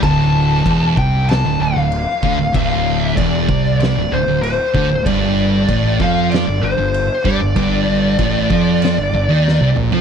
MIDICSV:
0, 0, Header, 1, 5, 480
1, 0, Start_track
1, 0, Key_signature, -1, "minor"
1, 0, Tempo, 627615
1, 24, Time_signature, 4, 2, 24, 8
1, 7655, End_track
2, 0, Start_track
2, 0, Title_t, "Lead electric guitar"
2, 0, Program_c, 0, 29
2, 22, Note_on_c, 0, 81, 105
2, 746, Note_off_c, 0, 81, 0
2, 749, Note_on_c, 0, 79, 109
2, 988, Note_off_c, 0, 79, 0
2, 991, Note_on_c, 0, 81, 97
2, 1210, Note_off_c, 0, 81, 0
2, 1236, Note_on_c, 0, 77, 105
2, 1950, Note_off_c, 0, 77, 0
2, 1959, Note_on_c, 0, 77, 104
2, 2303, Note_off_c, 0, 77, 0
2, 2303, Note_on_c, 0, 76, 104
2, 2416, Note_off_c, 0, 76, 0
2, 2420, Note_on_c, 0, 74, 95
2, 2870, Note_off_c, 0, 74, 0
2, 2905, Note_on_c, 0, 74, 91
2, 3151, Note_off_c, 0, 74, 0
2, 3152, Note_on_c, 0, 72, 85
2, 3376, Note_off_c, 0, 72, 0
2, 3385, Note_on_c, 0, 72, 80
2, 3862, Note_on_c, 0, 74, 91
2, 3878, Note_off_c, 0, 72, 0
2, 4552, Note_off_c, 0, 74, 0
2, 4604, Note_on_c, 0, 77, 98
2, 4823, Note_off_c, 0, 77, 0
2, 4826, Note_on_c, 0, 74, 81
2, 5059, Note_on_c, 0, 72, 85
2, 5072, Note_off_c, 0, 74, 0
2, 5539, Note_on_c, 0, 74, 80
2, 5556, Note_off_c, 0, 72, 0
2, 7433, Note_off_c, 0, 74, 0
2, 7655, End_track
3, 0, Start_track
3, 0, Title_t, "Distorted electric guitar"
3, 0, Program_c, 1, 30
3, 31, Note_on_c, 1, 38, 105
3, 499, Note_off_c, 1, 38, 0
3, 509, Note_on_c, 1, 40, 105
3, 738, Note_off_c, 1, 40, 0
3, 747, Note_on_c, 1, 48, 104
3, 1097, Note_off_c, 1, 48, 0
3, 1110, Note_on_c, 1, 38, 73
3, 1220, Note_off_c, 1, 38, 0
3, 1229, Note_on_c, 1, 38, 75
3, 1346, Note_off_c, 1, 38, 0
3, 1360, Note_on_c, 1, 38, 72
3, 1543, Note_off_c, 1, 38, 0
3, 1710, Note_on_c, 1, 50, 98
3, 1819, Note_off_c, 1, 50, 0
3, 1835, Note_on_c, 1, 38, 63
3, 1946, Note_off_c, 1, 38, 0
3, 1955, Note_on_c, 1, 38, 114
3, 2421, Note_off_c, 1, 38, 0
3, 2432, Note_on_c, 1, 40, 111
3, 2660, Note_off_c, 1, 40, 0
3, 2679, Note_on_c, 1, 48, 97
3, 3023, Note_off_c, 1, 48, 0
3, 3041, Note_on_c, 1, 38, 73
3, 3148, Note_off_c, 1, 38, 0
3, 3157, Note_on_c, 1, 38, 78
3, 3266, Note_off_c, 1, 38, 0
3, 3275, Note_on_c, 1, 38, 76
3, 3461, Note_off_c, 1, 38, 0
3, 3628, Note_on_c, 1, 50, 105
3, 3738, Note_off_c, 1, 50, 0
3, 3753, Note_on_c, 1, 38, 74
3, 3868, Note_off_c, 1, 38, 0
3, 3876, Note_on_c, 1, 43, 107
3, 4343, Note_off_c, 1, 43, 0
3, 4359, Note_on_c, 1, 45, 105
3, 4584, Note_off_c, 1, 45, 0
3, 4589, Note_on_c, 1, 53, 96
3, 4939, Note_off_c, 1, 53, 0
3, 4950, Note_on_c, 1, 43, 69
3, 5059, Note_off_c, 1, 43, 0
3, 5069, Note_on_c, 1, 43, 71
3, 5175, Note_off_c, 1, 43, 0
3, 5184, Note_on_c, 1, 43, 78
3, 5376, Note_off_c, 1, 43, 0
3, 5543, Note_on_c, 1, 55, 103
3, 5656, Note_off_c, 1, 55, 0
3, 5666, Note_on_c, 1, 43, 70
3, 5772, Note_off_c, 1, 43, 0
3, 5781, Note_on_c, 1, 43, 100
3, 6257, Note_off_c, 1, 43, 0
3, 6260, Note_on_c, 1, 45, 112
3, 6494, Note_on_c, 1, 53, 96
3, 6496, Note_off_c, 1, 45, 0
3, 6853, Note_off_c, 1, 53, 0
3, 6859, Note_on_c, 1, 43, 72
3, 6983, Note_off_c, 1, 43, 0
3, 6992, Note_on_c, 1, 43, 70
3, 7106, Note_on_c, 1, 51, 97
3, 7109, Note_off_c, 1, 43, 0
3, 7339, Note_off_c, 1, 51, 0
3, 7345, Note_on_c, 1, 48, 103
3, 7458, Note_off_c, 1, 48, 0
3, 7462, Note_on_c, 1, 46, 111
3, 7577, Note_off_c, 1, 46, 0
3, 7583, Note_on_c, 1, 53, 98
3, 7655, Note_off_c, 1, 53, 0
3, 7655, End_track
4, 0, Start_track
4, 0, Title_t, "Fingered electric bass"
4, 0, Program_c, 2, 33
4, 24, Note_on_c, 2, 26, 82
4, 473, Note_off_c, 2, 26, 0
4, 502, Note_on_c, 2, 28, 88
4, 726, Note_off_c, 2, 28, 0
4, 741, Note_on_c, 2, 36, 102
4, 1076, Note_off_c, 2, 36, 0
4, 1109, Note_on_c, 2, 26, 76
4, 1218, Note_off_c, 2, 26, 0
4, 1232, Note_on_c, 2, 26, 83
4, 1339, Note_off_c, 2, 26, 0
4, 1347, Note_on_c, 2, 26, 76
4, 1568, Note_off_c, 2, 26, 0
4, 1705, Note_on_c, 2, 38, 86
4, 1815, Note_off_c, 2, 38, 0
4, 1828, Note_on_c, 2, 26, 77
4, 1937, Note_off_c, 2, 26, 0
4, 1947, Note_on_c, 2, 26, 86
4, 2394, Note_off_c, 2, 26, 0
4, 2428, Note_on_c, 2, 28, 90
4, 2648, Note_off_c, 2, 28, 0
4, 2666, Note_on_c, 2, 36, 93
4, 2999, Note_off_c, 2, 36, 0
4, 3031, Note_on_c, 2, 26, 83
4, 3138, Note_off_c, 2, 26, 0
4, 3149, Note_on_c, 2, 26, 85
4, 3257, Note_off_c, 2, 26, 0
4, 3273, Note_on_c, 2, 26, 78
4, 3491, Note_off_c, 2, 26, 0
4, 3628, Note_on_c, 2, 38, 86
4, 3737, Note_off_c, 2, 38, 0
4, 3751, Note_on_c, 2, 26, 69
4, 3858, Note_off_c, 2, 26, 0
4, 3868, Note_on_c, 2, 31, 101
4, 4315, Note_off_c, 2, 31, 0
4, 4349, Note_on_c, 2, 33, 89
4, 4569, Note_off_c, 2, 33, 0
4, 4588, Note_on_c, 2, 41, 95
4, 4921, Note_off_c, 2, 41, 0
4, 4944, Note_on_c, 2, 31, 82
4, 5055, Note_off_c, 2, 31, 0
4, 5061, Note_on_c, 2, 31, 86
4, 5174, Note_off_c, 2, 31, 0
4, 5186, Note_on_c, 2, 31, 74
4, 5408, Note_off_c, 2, 31, 0
4, 5543, Note_on_c, 2, 43, 90
4, 5655, Note_off_c, 2, 43, 0
4, 5662, Note_on_c, 2, 31, 79
4, 5775, Note_off_c, 2, 31, 0
4, 5784, Note_on_c, 2, 31, 92
4, 6234, Note_off_c, 2, 31, 0
4, 6260, Note_on_c, 2, 33, 92
4, 6486, Note_off_c, 2, 33, 0
4, 6505, Note_on_c, 2, 41, 96
4, 6840, Note_off_c, 2, 41, 0
4, 6866, Note_on_c, 2, 31, 71
4, 6974, Note_off_c, 2, 31, 0
4, 6978, Note_on_c, 2, 31, 86
4, 7094, Note_off_c, 2, 31, 0
4, 7099, Note_on_c, 2, 39, 92
4, 7326, Note_off_c, 2, 39, 0
4, 7349, Note_on_c, 2, 36, 105
4, 7459, Note_off_c, 2, 36, 0
4, 7464, Note_on_c, 2, 34, 82
4, 7577, Note_off_c, 2, 34, 0
4, 7580, Note_on_c, 2, 41, 85
4, 7655, Note_off_c, 2, 41, 0
4, 7655, End_track
5, 0, Start_track
5, 0, Title_t, "Drums"
5, 22, Note_on_c, 9, 36, 119
5, 26, Note_on_c, 9, 49, 63
5, 99, Note_off_c, 9, 36, 0
5, 103, Note_off_c, 9, 49, 0
5, 503, Note_on_c, 9, 36, 103
5, 508, Note_on_c, 9, 49, 53
5, 579, Note_off_c, 9, 36, 0
5, 585, Note_off_c, 9, 49, 0
5, 743, Note_on_c, 9, 36, 100
5, 820, Note_off_c, 9, 36, 0
5, 985, Note_on_c, 9, 49, 59
5, 1006, Note_on_c, 9, 38, 110
5, 1062, Note_off_c, 9, 49, 0
5, 1082, Note_off_c, 9, 38, 0
5, 1466, Note_on_c, 9, 49, 48
5, 1543, Note_off_c, 9, 49, 0
5, 1705, Note_on_c, 9, 36, 95
5, 1781, Note_off_c, 9, 36, 0
5, 1946, Note_on_c, 9, 36, 115
5, 1948, Note_on_c, 9, 49, 60
5, 2023, Note_off_c, 9, 36, 0
5, 2025, Note_off_c, 9, 49, 0
5, 2427, Note_on_c, 9, 36, 107
5, 2431, Note_on_c, 9, 49, 62
5, 2503, Note_off_c, 9, 36, 0
5, 2507, Note_off_c, 9, 49, 0
5, 2667, Note_on_c, 9, 36, 109
5, 2743, Note_off_c, 9, 36, 0
5, 2909, Note_on_c, 9, 49, 62
5, 2930, Note_on_c, 9, 38, 112
5, 2985, Note_off_c, 9, 49, 0
5, 3006, Note_off_c, 9, 38, 0
5, 3390, Note_on_c, 9, 49, 52
5, 3467, Note_off_c, 9, 49, 0
5, 3629, Note_on_c, 9, 36, 97
5, 3705, Note_off_c, 9, 36, 0
5, 3870, Note_on_c, 9, 36, 126
5, 3874, Note_on_c, 9, 49, 68
5, 3946, Note_off_c, 9, 36, 0
5, 3950, Note_off_c, 9, 49, 0
5, 4349, Note_on_c, 9, 36, 97
5, 4350, Note_on_c, 9, 49, 54
5, 4425, Note_off_c, 9, 36, 0
5, 4426, Note_off_c, 9, 49, 0
5, 4588, Note_on_c, 9, 36, 109
5, 4665, Note_off_c, 9, 36, 0
5, 4831, Note_on_c, 9, 49, 54
5, 4851, Note_on_c, 9, 38, 127
5, 4907, Note_off_c, 9, 49, 0
5, 4928, Note_off_c, 9, 38, 0
5, 5309, Note_on_c, 9, 49, 53
5, 5386, Note_off_c, 9, 49, 0
5, 5546, Note_on_c, 9, 36, 105
5, 5566, Note_on_c, 9, 38, 29
5, 5622, Note_off_c, 9, 36, 0
5, 5643, Note_off_c, 9, 38, 0
5, 5781, Note_on_c, 9, 49, 60
5, 5784, Note_on_c, 9, 36, 118
5, 5857, Note_off_c, 9, 49, 0
5, 5860, Note_off_c, 9, 36, 0
5, 6260, Note_on_c, 9, 49, 58
5, 6263, Note_on_c, 9, 36, 105
5, 6337, Note_off_c, 9, 49, 0
5, 6340, Note_off_c, 9, 36, 0
5, 6503, Note_on_c, 9, 36, 100
5, 6580, Note_off_c, 9, 36, 0
5, 6745, Note_on_c, 9, 49, 64
5, 6766, Note_on_c, 9, 38, 113
5, 6821, Note_off_c, 9, 49, 0
5, 6842, Note_off_c, 9, 38, 0
5, 7250, Note_on_c, 9, 38, 59
5, 7327, Note_off_c, 9, 38, 0
5, 7467, Note_on_c, 9, 45, 78
5, 7544, Note_off_c, 9, 45, 0
5, 7587, Note_on_c, 9, 43, 82
5, 7655, Note_off_c, 9, 43, 0
5, 7655, End_track
0, 0, End_of_file